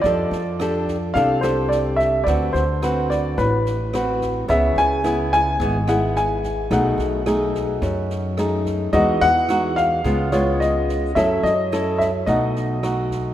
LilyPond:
<<
  \new Staff \with { instrumentName = "Grand piano" } { \time 4/4 \key cis \minor \tempo 4 = 108 d''2 f''8 c''8 d''8 e''8 | d''8 c''4 d''8 b'4. r8 | e''8 gis''4 gis''4 fis''8 gis''4 | fis''2 r2 |
dis''8 fis''4 f''4 cis''8 dis''4 | e''8 dis''4 e''8 dis''4. r8 | }
  \new Staff \with { instrumentName = "Nylon-string guitar" } { \time 4/4 \key cis \minor << { <d' g' a'>8 r8 <d' g' a'>8 r8 <d' g' a'>8 <d' g' a'>4. | <c' fis' b'>8 r8 <c' fis' b'>4. r8 <c' fis' b'>4 | <b e' gis'>4 <b e' gis'>4 <b e' gis'>8 <b e' gis'>4. | <a dis' gis'>4 <a dis' gis'>2 <a dis' gis'>4 |
<gis dis' fis'>8 r8 <gis dis' fis'>4 <gis b eis'>8 <gis b eis'>4. | <cis' e' a'>8 r8 <cis' e' a'>8 r8 <a dis' fis'>4 <a dis' fis'>4 | } \\ { f2 c2 | d2 a,2 | cis2 gis,2 | b,2 fis,2 |
e2 cis2 | fis2 b,2 | } >> }
  \new Staff \with { instrumentName = "Upright bass" } { \clef bass \time 4/4 \key cis \minor f,8 f,4. c,2 | d,8 d,4. a,,2 | cis,8 cis,4. gis,,2 | b,,8 b,,4. fis,2 |
e,8 e,4. cis,2 | fis,8 fis,4. b,,2 | }
  \new DrumStaff \with { instrumentName = "Drums" } \drummode { \time 4/4 <bd sn>8 sn8 <ss sn>8 <bd sn>8 <bd sn>8 <ss sn>8 sn8 <bd sn>8 | <bd ss sn>8 sn8 <ss sn>8 <bd sn>8 <bd sn>8 sn8 <ss sn>8 <bd sn>8 | <bd sn>8 sn8 <ss sn>8 <bd sn>8 <bd sn>8 <ss sn>8 sn8 <bd sn>8 | <bd ss sn>8 sn8 <ss sn>8 <bd sn>8 <bd sn>8 sn8 <ss sn>8 <bd sn>8 |
<bd sn>8 sn8 <ss sn>8 <bd sn>8 <bd sn>8 <ss sn>8 sn8 <bd sn>8 | <bd ss sn>8 sn8 <ss sn>8 <bd sn>8 <bd sn>8 sn8 <ss sn>8 <bd sn>8 | }
>>